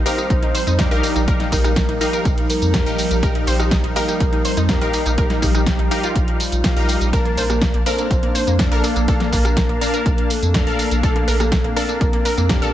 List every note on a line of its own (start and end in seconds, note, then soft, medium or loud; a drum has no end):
0.00 7.09 F3 medium
0.00 7.09 G3 medium
0.00 7.09 D#4 medium
0.06 0.52 D#4 loud
0.06 0.52 G4 medium
0.06 0.13 A#4 loud
0.06 0.52 A#4 medium
0.06 0.80 C5 loud
0.06 0.52 F5 loud
0.06 open hi-hat loud
0.06 tambourine medium
0.18 0.25 D#4 medium
0.18 closed hi-hat soft
0.18 tambourine soft
0.30 0.40 A#1 medium
0.30 0.37 D#4 medium
0.30 kick loud
0.30 closed hi-hat medium
0.30 tambourine soft
0.42 0.49 D#4 medium
0.42 closed hi-hat soft
0.55 0.61 C5 medium
0.55 open hi-hat loud
0.55 tambourine medium
0.67 0.87 F2 medium
0.67 0.73 D#4 medium
0.67 closed hi-hat soft
0.67 tambourine soft
0.79 0.88 D#4 medium
0.79 0.86 D#4 medium
0.79 0.88 G4 medium
0.79 0.88 A#4 medium
0.79 1.42 D5 loud
0.79 0.88 F5 loud
0.79 kick loud
0.79 snare loud
0.79 closed hi-hat medium
0.79 tambourine soft
0.91 1.01 A#1 loud
0.91 1.25 D#4 medium
0.91 1.25 G4 medium
0.91 0.98 A#4 loud
0.91 1.25 A#4 medium
0.91 1.25 F5 loud
0.91 closed hi-hat soft
1.03 1.10 D#4 medium
1.03 open hi-hat loud
1.03 tambourine medium
1.16 1.49 A#1 medium
1.16 1.22 D#4 medium
1.16 closed hi-hat soft
1.16 tambourine soft
1.28 1.98 D#4 medium
1.28 1.98 G4 medium
1.28 1.98 A#4 medium
1.28 1.34 A#4 loud
1.28 1.98 F5 medium
1.28 kick loud
1.28 closed hi-hat medium
1.28 tambourine soft
1.40 1.47 D#4 medium
1.40 snare soft
1.40 closed hi-hat soft
1.52 1.85 A#1 loud
1.52 1.59 D#4 medium
1.52 2.40 A#4 loud
1.52 kick medium
1.52 open hi-hat loud
1.52 tambourine medium
1.64 1.71 D#4 medium
1.64 cross-stick medium
1.64 closed hi-hat soft
1.64 tambourine soft
1.76 kick loud
1.76 snare loud
1.76 closed hi-hat medium
1.76 tambourine soft
1.89 1.99 A#1 loud
1.89 1.95 D#4 medium
1.89 closed hi-hat soft
2.01 2.47 D#4 medium
2.01 2.08 D#4 medium
2.01 2.47 G4 medium
2.01 2.47 A#4 medium
2.01 2.47 F5 loud
2.01 open hi-hat loud
2.01 tambourine medium
2.13 3.13 A#4 medium
2.13 closed hi-hat soft
2.13 tambourine soft
2.25 2.35 A#1 medium
2.25 kick loud
2.25 closed hi-hat medium
2.25 tambourine soft
2.38 closed hi-hat soft
2.50 3.24 A#4 loud
2.50 open hi-hat loud
2.50 tambourine medium
2.62 2.82 F2 medium
2.62 closed hi-hat soft
2.62 tambourine soft
2.74 2.83 D#4 medium
2.74 2.83 G4 medium
2.74 2.83 A#4 medium
2.74 2.83 F5 medium
2.74 kick loud
2.74 snare loud
2.74 closed hi-hat medium
2.74 tambourine soft
2.86 2.96 A#1 loud
2.86 3.20 D#4 loud
2.86 3.20 G4 medium
2.86 3.20 A#4 medium
2.86 3.20 F5 loud
2.86 closed hi-hat soft
2.98 open hi-hat loud
2.98 tambourine medium
3.11 3.44 A#1 loud
3.11 closed hi-hat soft
3.11 tambourine soft
3.23 3.93 D#4 medium
3.23 3.86 G4 loud
3.23 3.93 G4 medium
3.23 3.93 A#4 medium
3.23 3.30 A#4 loud
3.23 3.93 F5 medium
3.23 kick loud
3.23 closed hi-hat medium
3.23 tambourine soft
3.35 3.42 D#4 medium
3.35 closed hi-hat soft
3.47 3.81 A#1 loud
3.47 3.54 C5 loud
3.47 open hi-hat loud
3.47 tambourine medium
3.60 3.66 D#4 medium
3.60 cross-stick medium
3.60 closed hi-hat soft
3.60 tambourine soft
3.71 3.78 D#4 medium
3.71 kick loud
3.71 snare loud
3.71 closed hi-hat medium
3.71 tambourine soft
3.84 3.94 A#1 loud
3.84 3.91 D#4 medium
3.84 closed hi-hat soft
3.96 4.42 D#4 loud
3.96 4.42 G4 medium
3.96 4.42 A#4 medium
3.96 4.03 A#4 loud
3.96 4.60 A#4 loud
3.96 4.42 F5 loud
3.96 open hi-hat loud
3.96 tambourine medium
4.08 4.15 D#4 medium
4.08 closed hi-hat soft
4.08 tambourine soft
4.20 4.31 A#1 medium
4.20 4.27 D#4 medium
4.20 kick loud
4.20 closed hi-hat loud
4.20 tambourine soft
4.33 4.39 D#4 medium
4.33 closed hi-hat soft
4.45 4.52 C5 loud
4.45 open hi-hat loud
4.45 tambourine medium
4.57 4.77 F2 medium
4.57 4.64 D#4 medium
4.57 closed hi-hat soft
4.57 tambourine soft
4.69 4.79 D#4 medium
4.69 4.76 D#4 medium
4.69 4.78 G4 medium
4.69 4.78 A#4 medium
4.69 5.44 A#4 loud
4.69 4.78 F5 medium
4.69 kick loud
4.69 snare loud
4.69 closed hi-hat loud
4.69 tambourine soft
4.81 4.92 A#1 loud
4.81 5.15 D#4 medium
4.81 5.15 G4 medium
4.81 5.15 A#4 medium
4.81 4.88 A#4 loud
4.81 5.15 F5 loud
4.81 closed hi-hat soft
4.93 5.00 D#4 medium
4.93 open hi-hat loud
4.93 tambourine medium
5.06 5.39 A#1 medium
5.06 5.13 D#4 medium
5.06 closed hi-hat soft
5.06 tambourine soft
5.18 5.88 D#4 medium
5.18 5.88 G4 medium
5.18 5.88 A#4 medium
5.18 5.25 A#4 medium
5.18 5.88 F5 medium
5.18 kick loud
5.18 closed hi-hat medium
5.18 tambourine soft
5.30 5.37 D#4 medium
5.30 snare soft
5.30 closed hi-hat soft
5.42 5.76 A#1 loud
5.42 5.49 D#4 medium
5.42 6.30 G4 loud
5.42 kick medium
5.42 open hi-hat loud
5.42 tambourine medium
5.55 5.61 D#4 medium
5.55 cross-stick medium
5.55 closed hi-hat soft
5.55 tambourine soft
5.66 kick loud
5.66 snare loud
5.66 closed hi-hat loud
5.66 tambourine soft
5.79 5.89 A#1 loud
5.79 5.86 D#4 medium
5.79 closed hi-hat soft
5.91 6.37 D#4 loud
5.91 5.98 D#4 medium
5.91 6.37 G4 medium
5.91 6.37 A#4 medium
5.91 6.37 F5 loud
5.91 open hi-hat loud
5.91 tambourine medium
6.03 7.03 F4 loud
6.03 closed hi-hat soft
6.03 tambourine soft
6.16 6.26 A#1 medium
6.16 kick loud
6.16 closed hi-hat loud
6.16 tambourine soft
6.28 closed hi-hat soft
6.40 7.03 F4 loud
6.40 open hi-hat loud
6.40 tambourine medium
6.52 6.62 A#1 medium
6.52 closed hi-hat soft
6.52 tambourine soft
6.64 6.74 D#4 medium
6.64 6.74 G4 medium
6.64 6.74 A#4 medium
6.64 6.74 F5 medium
6.64 kick loud
6.64 snare loud
6.64 closed hi-hat loud
6.64 tambourine soft
6.76 6.97 A#1 medium
6.76 7.10 D#4 medium
6.76 7.10 G4 medium
6.76 7.10 A#4 medium
6.76 7.10 F5 loud
6.76 closed hi-hat soft
6.89 open hi-hat loud
6.89 tambourine medium
7.01 7.34 A#1 medium
7.01 closed hi-hat soft
7.01 tambourine soft
7.13 10.99 A#3 medium
7.13 7.83 D4 medium
7.13 12.73 D4 loud
7.13 7.20 A#4 loud
7.13 7.83 A#4 medium
7.13 7.77 A#4 loud
7.13 7.83 F5 medium
7.13 7.83 A5 medium
7.13 kick loud
7.13 closed hi-hat medium
7.13 tambourine soft
7.25 7.32 A#3 medium
7.25 closed hi-hat soft
7.37 7.71 A#1 loud
7.37 7.44 C5 medium
7.37 open hi-hat loud
7.37 tambourine medium
7.50 7.56 A#3 medium
7.50 cross-stick medium
7.50 closed hi-hat soft
7.50 tambourine soft
7.62 7.69 A#3 medium
7.62 kick loud
7.62 snare loud
7.62 closed hi-hat medium
7.62 tambourine soft
7.74 7.84 A#1 loud
7.74 7.81 A#3 medium
7.74 closed hi-hat soft
7.86 8.32 D4 loud
7.86 8.32 A4 medium
7.86 7.93 A#4 loud
7.86 8.32 A#4 medium
7.86 8.61 C5 loud
7.86 8.32 F5 loud
7.86 open hi-hat loud
7.86 tambourine medium
7.98 8.05 A#3 medium
7.98 closed hi-hat soft
7.98 tambourine soft
8.11 8.21 A#1 medium
8.11 8.17 A#3 medium
8.11 kick loud
8.11 closed hi-hat medium
8.11 tambourine soft
8.23 8.30 A#3 medium
8.23 closed hi-hat soft
8.35 8.42 C5 medium
8.35 open hi-hat loud
8.35 tambourine medium
8.47 8.68 F2 medium
8.47 8.54 A#3 medium
8.47 closed hi-hat soft
8.47 tambourine soft
8.59 8.66 A#3 medium
8.59 8.69 D4 medium
8.59 8.69 A4 medium
8.59 8.69 A#4 medium
8.59 9.23 D5 loud
8.59 8.69 F5 medium
8.59 kick loud
8.59 snare loud
8.59 closed hi-hat loud
8.59 tambourine soft
8.72 8.82 A#1 loud
8.72 9.05 D4 medium
8.72 9.05 A4 medium
8.72 8.78 A#4 loud
8.72 9.05 A#4 medium
8.72 9.05 F5 loud
8.72 closed hi-hat soft
8.84 8.91 A#3 medium
8.84 open hi-hat loud
8.84 tambourine medium
8.96 9.29 A#1 loud
8.96 9.03 A#3 medium
8.96 closed hi-hat soft
8.96 tambourine soft
9.08 9.78 D4 medium
9.08 9.15 A4 loud
9.08 9.79 A#4 medium
9.08 9.79 F5 medium
9.08 9.79 A5 medium
9.08 kick loud
9.08 closed hi-hat loud
9.08 tambourine soft
9.20 9.27 A#3 medium
9.20 snare soft
9.20 closed hi-hat soft
9.33 9.66 A#1 loud
9.33 9.39 A#3 medium
9.33 10.32 A#4 loud
9.33 kick medium
9.33 open hi-hat loud
9.33 tambourine medium
9.45 9.52 A#3 medium
9.45 cross-stick medium
9.45 closed hi-hat soft
9.45 tambourine soft
9.57 kick loud
9.57 snare loud
9.57 closed hi-hat loud
9.57 tambourine soft
9.69 9.79 A#1 loud
9.69 9.76 A#3 medium
9.69 closed hi-hat soft
9.81 9.88 A#3 medium
9.81 10.27 D4 medium
9.81 10.27 A#4 medium
9.81 10.27 F5 loud
9.81 10.27 A5 medium
9.81 open hi-hat loud
9.81 tambourine medium
9.94 10.94 A#4 loud
9.94 closed hi-hat soft
9.94 tambourine soft
10.06 10.16 A#1 medium
10.06 kick loud
10.06 closed hi-hat medium
10.06 tambourine soft
10.18 closed hi-hat soft
10.30 10.94 A4 loud
10.30 open hi-hat loud
10.30 tambourine medium
10.42 10.63 F2 medium
10.42 closed hi-hat soft
10.42 tambourine soft
10.54 10.64 D4 medium
10.54 10.64 A4 medium
10.54 10.64 A#4 medium
10.54 10.64 F5 medium
10.54 kick loud
10.54 snare loud
10.54 closed hi-hat loud
10.54 tambourine soft
10.67 10.77 A#1 loud
10.67 11.00 D4 medium
10.67 11.00 A4 medium
10.67 11.00 A#4 medium
10.67 11.00 F5 loud
10.67 closed hi-hat soft
10.79 open hi-hat loud
10.79 tambourine medium
10.91 11.25 A#1 loud
10.91 closed hi-hat soft
10.91 tambourine soft
11.03 11.74 A#3 medium
11.03 12.73 C4 medium
11.03 11.74 D4 medium
11.03 11.10 A4 loud
11.03 11.67 A4 loud
11.03 11.74 A4 medium
11.03 11.74 F5 medium
11.03 kick loud
11.03 closed hi-hat medium
11.03 tambourine soft
11.16 11.22 A#3 medium
11.16 closed hi-hat soft
11.28 11.61 A#1 loud
11.28 11.34 A#4 loud
11.28 open hi-hat loud
11.28 tambourine medium
11.40 11.47 A#3 medium
11.40 cross-stick medium
11.40 closed hi-hat soft
11.40 tambourine soft
11.52 11.59 A#3 medium
11.52 kick loud
11.52 snare loud
11.52 closed hi-hat medium
11.52 tambourine soft
11.64 11.74 A#1 loud
11.64 11.71 A#3 medium
11.64 closed hi-hat soft
11.76 12.22 D4 loud
11.76 11.83 A4 loud
11.76 12.40 A#4 loud
11.76 12.22 A#4 medium
11.76 12.22 F5 loud
11.76 12.22 A5 medium
11.76 open hi-hat loud
11.76 tambourine medium
11.89 11.95 A#3 medium
11.89 closed hi-hat soft
11.89 tambourine soft
12.01 12.11 A#1 medium
12.01 12.08 A#3 medium
12.01 kick loud
12.01 closed hi-hat medium
12.01 tambourine soft
12.13 12.20 A#3 medium
12.13 closed hi-hat soft
12.25 12.32 A#4 medium
12.25 open hi-hat loud
12.25 tambourine medium
12.38 12.58 F2 medium
12.38 12.44 A#3 medium
12.38 closed hi-hat soft
12.38 tambourine soft
12.49 12.56 A#3 medium
12.49 12.59 D4 medium
12.49 12.73 G4 loud
12.49 12.59 A4 medium
12.49 12.59 A#4 medium
12.49 12.59 F5 medium
12.49 kick loud
12.49 snare loud
12.49 closed hi-hat medium
12.49 tambourine soft
12.62 12.72 A#1 loud
12.62 12.73 D4 medium
12.62 12.73 A4 medium
12.62 12.69 A4 loud
12.62 12.73 A#4 medium
12.62 12.73 F5 loud
12.62 closed hi-hat soft